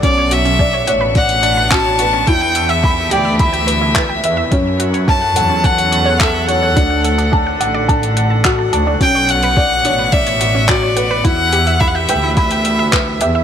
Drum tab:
HH |x-xx--x-xxx-x-x-|x-xx--x-xxx-x-x-|x-xx--x-xxx-x-x-|x-xx--x-xxx-x-x-|
CP |------------x---|------------x---|------------x---|------------x---|
BD |o---o---o---o---|o---o---o---o---|o---o---o---o---|o---o---o---o---|

HH |x-xx--x-xxx-x-x-|x-xx--x-xxx-x-x-|
CP |------------x---|------------x---|
BD |o---o---o---o---|o---o---o---o---|